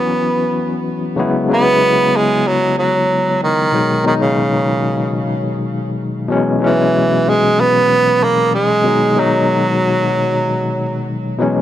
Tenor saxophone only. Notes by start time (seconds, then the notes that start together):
Already playing: B3
1.53 B3
2.16 G#3
2.47 F#3
2.78 F#3
3.43 D#3
4.07 D#3
4.22 C#3
6.66 E3
7.29 G#3
7.61 B3
8.23 A#3
8.55 G#3
9.19 F#3